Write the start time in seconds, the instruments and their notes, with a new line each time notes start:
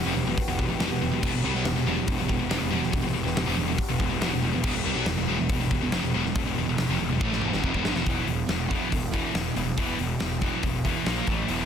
Already playing: analog synth pad E3 B3 F#4 G4
0.05 picked electric bass F1, distorted electric guitar F2 C3
0.16 picked electric bass E1, distorted electric guitar E2 B2
0.27 picked electric bass E1, distorted electric guitar E2 B2
0.37 muted picked electric bass stroke, muted distorted electric guitar stroke, kick, open hi-hat
0.48 picked electric bass E1, distorted electric guitar E2 B2
0.59 picked electric bass E1, distorted electric guitar E2 B2, kick
0.70 picked electric bass E1, distorted electric guitar E2 B2
0.80 picked electric bass E1, distorted electric guitar E2 B2, snare, open hi-hat
0.90 picked electric bass E1, distorted electric guitar E2 B2
1.01 picked electric bass E1, distorted electric guitar E2 B2
1.13 picked electric bass E1, distorted electric guitar E2 B2
1.23 picked electric bass E1, distorted electric guitar E2 B2, kick, crash
1.34 picked electric bass E1, distorted electric guitar E2 B2
1.44 picked electric bass C2, distorted electric guitar C3 G3
1.55 picked electric bass B1, distorted electric guitar B2 F#3, snare
1.65 picked electric bass E1, distorted electric guitar E2 B2, snare, open hi-hat
1.75 picked electric bass E1, distorted electric guitar E2 B2
1.86 picked electric bass E1, distorted electric guitar E2 B2
1.97 picked electric bass E1, distorted electric guitar E2 B2
2.07 picked electric bass E1, distorted electric guitar E2 B2, kick, open hi-hat
2.18 picked electric bass E1, distorted electric guitar E2 B2
2.28 picked electric bass E1, distorted electric guitar E2 B2, kick
2.39 picked electric bass E1, distorted electric guitar E2 B2
2.50 picked electric bass F1, distorted electric guitar F2 C3, snare, open hi-hat
2.60 picked electric bass E1, distorted electric guitar E2 B2
2.64 distorted electric guitar E2 B2
2.71 picked electric bass E1, distorted electric guitar E2 B2
2.75 distorted electric guitar E2 B2
2.81 picked electric bass E1, distorted electric guitar E2 B2, snare
2.86 distorted electric guitar B2
2.92 picked electric bass E1, distorted electric guitar E2 B2, kick, open hi-hat
2.97 distorted electric guitar B2
3.03 picked electric bass E1, distorted electric guitar E2 B2
3.14 picked electric bass E1, distorted electric guitar E2 B2
3.25 picked electric bass E1, distorted electric guitar E2 B2, snare
3.36 picked electric bass E1, distorted electric guitar E2 B2, snare, open hi-hat
3.46 picked electric bass F1, distorted electric guitar F2 C3
3.57 picked electric bass E1, distorted electric guitar E2 B2
3.68 picked electric bass E1, distorted electric guitar E2 B2
3.78 muted distorted electric guitar stroke, muted picked electric bass stroke, kick, open hi-hat
3.89 picked electric bass E1, distorted electric guitar E2 B2
4.00 picked electric bass E1, distorted electric guitar E2 B2, kick
4.11 picked electric bass E1, distorted electric guitar E2 B2
4.21 picked electric bass E1, distorted electric guitar E2 B2, snare, open hi-hat
4.33 picked electric bass E1, distorted electric guitar E2 B2
4.43 picked electric bass E1, distorted electric guitar E2 B2
4.53 picked electric bass E1, distorted electric guitar E2 B2
4.63 picked electric bass E1, distorted electric guitar E2 B2, kick, crash
4.75 picked electric bass E1, distorted electric guitar E2 B2
4.84 picked electric bass C2, distorted electric guitar C3 G3
4.96 picked electric bass B1, distorted electric guitar B2 F#3
5.06 picked electric bass E1, distorted electric guitar E2 B2, snare, open hi-hat
5.18 picked electric bass E1, distorted electric guitar E2 B2
5.28 picked electric bass E1, distorted electric guitar E2 B2
5.38 picked electric bass E1, distorted electric guitar E2 B2
5.49 picked electric bass E1, distorted electric guitar E2 B2, kick, open hi-hat
5.60 picked electric bass E1, distorted electric guitar E2 B2
5.71 picked electric bass E1, distorted electric guitar E2 B2, kick
5.81 picked electric bass E1, distorted electric guitar E2 B2
5.92 picked electric bass F1, distorted electric guitar F2 C3, snare, open hi-hat
6.03 picked electric bass E1, distorted electric guitar E2 B2
6.14 picked electric bass E1, distorted electric guitar E2 B2
6.25 picked electric bass E1, distorted electric guitar E2 B2, snare
6.35 picked electric bass E1, distorted electric guitar E2 B2, kick, open hi-hat
6.46 picked electric bass E1, distorted electric guitar E2 B2
6.57 picked electric bass E1, distorted electric guitar E2 B2
6.68 picked electric bass E1, distorted electric guitar E2 B2
6.78 picked electric bass E1, distorted electric guitar E2 B2, snare, open hi-hat
6.89 picked electric bass F1, distorted electric guitar F2 C3
7.01 picked electric bass E1, distorted electric guitar E2 B2
7.11 picked electric bass E1, distorted electric guitar E2 B2
7.21 picked electric bass A1, distorted electric guitar A2 E3 A3, kick, high tom
7.32 snare
7.40 picked electric bass E1, distorted electric guitar E2, mid tom
7.44 distorted electric guitar E2 B2
7.53 picked electric bass G1, distorted electric guitar G2 D3, snare
7.64 picked electric bass F1, distorted electric guitar F2 C3, kick
7.74 picked electric bass E1, distorted electric guitar E2 B2, kick
7.85 picked electric bass G1, distorted electric guitar G2 D3, snare
7.96 picked electric bass E1, distorted electric guitar E2 B2, snare
8.06 picked electric bass E1, distorted electric guitar E2 B2 E3, kick, open hi-hat
8.28 picked electric bass E1, distorted electric guitar E2 B2, open hi-hat
8.47 picked electric bass E1, distorted electric guitar E2 B2, snare, open hi-hat
8.51 distorted electric guitar B2
8.71 distorted electric guitar E2 B2 E3, kick, open hi-hat
8.92 picked electric bass E1, distorted electric guitar E2 B2, kick, open hi-hat
9.14 distorted electric guitar E2 B2 E3, kick, open hi-hat
9.34 picked electric bass E1, distorted electric guitar E2 B2, snare, open hi-hat
9.56 picked electric bass E1, distorted electric guitar E2 B2, open hi-hat
9.78 picked electric bass E1, distorted electric guitar E2 B2 E3, kick, open hi-hat
9.99 picked electric bass E1, distorted electric guitar E2 B2, open hi-hat
10.20 picked electric bass E1, distorted electric guitar E2 B2, snare, open hi-hat
10.41 distorted electric guitar E2 B2 E3, kick, open hi-hat
10.63 picked electric bass E1, distorted electric guitar E2 B2, kick, open hi-hat
10.85 distorted electric guitar E2 B2 E3, kick, open hi-hat
11.06 picked electric bass A#1, distorted electric guitar A#2 F3 A#3, snare, open hi-hat
11.27 picked electric bass A1, distorted electric guitar A2 E3 A3, kick, open hi-hat
11.48 picked electric bass E1, distorted electric guitar E2 B2 E3, open hi-hat